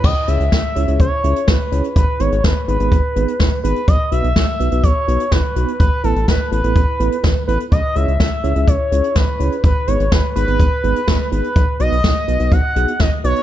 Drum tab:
CC |x---------------|----------------|----------------|----------------|
HH |--xx--xxx-xx--xx|x-xx--xxx-xx--xx|x-xx--xxx-xx--xx|x-xx--xxx-xx--xx|
SD |----o-------o---|----o-------o---|----o-------o---|----o-------o---|
BD |o---o---o---o---|o---o---o---o---|o---o---o---o---|o---o---o---o---|

CC |----------------|----------------|----------------|
HH |x-xx--xxx-xx--xx|x-xx--xxx-xx--xx|x-xx--xxx-xx--xx|
SD |----o-------o---|----o-------o---|----o-------o---|
BD |o---o---o---o---|o---o---o---o---|o---o---o---o---|